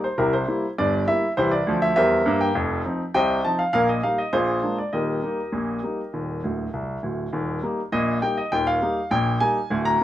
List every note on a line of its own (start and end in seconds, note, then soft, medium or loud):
0.04 0.19 C5 medium
0.18 0.44 C2 medium
0.18 0.43 C3 medium
0.18 0.33 E4 medium
0.18 0.33 G4 medium
0.18 0.33 A#4 medium
0.33 0.69 C5 medium
0.48 0.64 G3 soft
0.48 0.64 A#3 soft
0.48 0.65 E4 medium
0.78 1.03 G1 medium
0.78 1.03 G2 medium
0.78 1.02 D5 medium
1.07 1.24 G3 soft
1.07 1.24 A#3 soft
1.07 1.24 E4 medium
1.07 1.31 E5 medium
1.37 1.61 C2 medium
1.37 1.62 E3 medium
1.37 1.51 E4 medium
1.37 1.52 G4 medium
1.37 1.52 C5 medium
1.51 1.75 D5 medium
1.67 1.90 D2 medium
1.67 1.91 F3 medium
1.82 1.94 E5 medium
1.96 2.20 E2 medium
1.96 2.21 G3 medium
1.96 2.38 A#4 medium
1.96 2.38 C5 medium
1.96 2.38 E5 loud
2.26 2.49 G2 medium
2.26 2.50 A#3 medium
2.41 2.55 G5 medium
2.55 2.80 F1 medium
2.55 2.80 F2 medium
2.85 3.01 F3 medium
2.85 3.01 C4 medium
2.85 3.01 D#4 medium
3.14 3.39 C2 medium
3.14 3.39 C3 medium
3.14 3.42 C5 medium
3.14 3.42 D#5 medium
3.14 3.42 G5 loud
3.44 3.61 F3 soft
3.44 3.61 C4 soft
3.44 3.61 D#4 medium
3.44 3.59 A5 medium
3.59 3.72 F5 medium
3.73 3.99 A#1 medium
3.73 3.99 A#2 medium
3.73 3.88 A#4 medium
3.73 3.88 F5 loud
3.89 4.03 D#5 medium
4.03 4.20 G3 soft
4.03 4.20 A#3 soft
4.03 4.20 D#4 soft
4.03 4.18 F5 medium
4.18 4.33 D#5 medium
4.33 4.58 A#1 medium
4.33 4.58 A#2 medium
4.33 4.75 F4 medium
4.33 4.75 G#4 medium
4.33 4.75 C5 medium
4.63 4.79 G#3 soft
4.63 4.80 A#3 soft
4.63 4.80 D4 soft
4.78 4.93 D5 medium
4.93 5.18 D#1 medium
4.93 5.18 D#2 medium
4.93 6.69 G4 medium
4.93 6.69 A#4 medium
4.93 6.69 D#5 medium
5.23 5.39 G3 soft
5.23 5.40 A#3 soft
5.23 5.40 D#4 soft
5.52 5.78 A#1 medium
5.52 5.78 A#2 medium
5.83 6.00 G3 soft
5.83 6.00 A#3 soft
5.83 6.00 D#4 soft
6.13 6.39 D#1 medium
6.13 6.39 D#2 medium
6.44 6.66 D1 medium
6.44 6.66 D2 medium
6.73 6.96 C2 medium
7.03 7.25 D1 medium
7.03 7.26 D2 medium
7.33 7.58 D#1 medium
7.33 7.58 D#2 medium
7.63 7.79 G3 soft
7.63 7.79 A#3 soft
7.63 7.80 D#4 soft
7.92 8.18 A#1 medium
7.92 8.18 A#2 medium
7.92 8.16 D#5 medium
8.22 8.39 G3 soft
8.22 8.39 A#3 soft
8.22 8.39 D#4 medium
8.22 8.37 G5 medium
8.37 8.52 D#5 medium
8.52 8.77 D#1 medium
8.52 8.77 D#2 medium
8.52 8.67 G5 medium
8.67 9.09 F5 medium
8.82 8.98 G3 soft
8.82 8.98 A#3 soft
8.82 8.99 D#4 medium
9.11 9.36 A#1 medium
9.11 9.37 A#2 medium
9.11 9.39 G5 medium
9.40 9.57 G3 soft
9.40 9.57 A#3 medium
9.40 9.58 D#4 medium
9.40 9.76 G#5 loud
9.70 9.96 D1 medium
9.70 9.96 D2 medium
9.85 10.04 A#5 loud